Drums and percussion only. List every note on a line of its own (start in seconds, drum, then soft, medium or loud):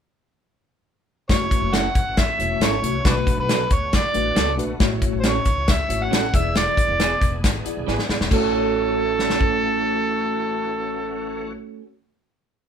1.29 kick medium
1.29 snare medium
1.29 closed hi-hat medium
1.51 kick medium
1.51 closed hi-hat medium
1.73 snare medium
1.73 closed hi-hat medium
1.95 kick medium
1.95 closed hi-hat medium
2.17 kick medium
2.17 snare loud
2.17 closed hi-hat medium
2.40 closed hi-hat medium
2.61 snare loud
2.61 closed hi-hat medium
2.84 closed hi-hat medium
3.05 kick loud
3.05 snare loud
3.05 closed hi-hat medium
3.27 kick medium
3.27 closed hi-hat medium
3.49 snare medium
3.49 closed hi-hat medium
3.71 kick medium
3.71 closed hi-hat medium
3.93 kick medium
3.93 snare loud
3.93 closed hi-hat medium
4.14 closed hi-hat medium
4.36 snare loud
4.36 closed hi-hat medium
4.59 closed hi-hat medium
4.80 kick loud
4.80 snare loud
4.80 closed hi-hat medium
5.02 kick medium
5.02 closed hi-hat medium
5.24 snare medium
5.24 closed hi-hat medium
5.45 kick medium
5.45 closed hi-hat medium
5.68 kick medium
5.68 snare loud
5.68 closed hi-hat medium
5.90 closed hi-hat medium
6.13 snare loud
6.13 closed hi-hat medium
6.34 kick medium
6.34 closed hi-hat medium
6.55 snare loud
6.55 closed hi-hat medium
6.77 kick medium
6.77 closed hi-hat medium
7.00 snare medium
7.00 closed hi-hat medium
7.22 kick medium
7.22 closed hi-hat medium
7.44 kick medium
7.44 snare loud
7.44 closed hi-hat medium
7.66 closed hi-hat medium
7.88 snare soft
7.99 snare medium
8.09 snare medium
8.21 snare medium
8.31 kick medium
8.31 crash medium
9.19 snare medium
9.30 snare medium
9.41 kick medium